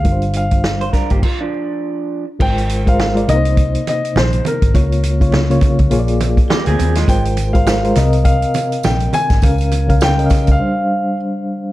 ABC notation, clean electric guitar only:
X:1
M:4/4
L:1/16
Q:"Swing 16ths" 1/4=102
K:Cm
V:1 name="Clean electric guitar"
z4 z c [DB] [B,G] F [F,D]6 z | z16 | z12 [B,G] [CA]2 [A,F]- | [A,F] z12 z3 |
z16 |]